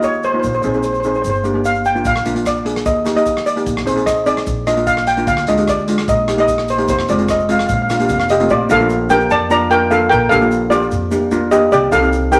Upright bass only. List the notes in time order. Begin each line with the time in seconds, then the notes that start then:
Already playing: D#2
0.44 A#1
0.64 A#1
1.25 G1
2.05 A#1
2.25 A#1
2.86 D#2
3.67 A#1
3.88 A#1
4.47 A#1
5.27 D2
5.48 D2
6.08 A#1
6.89 F1
7.10 F1
7.70 A#1
8.09 F1
8.50 A#1
8.70 A#1
9.31 F2
10.12 A#1
10.31 A#1
10.92 F2
11.72 C2
11.92 C2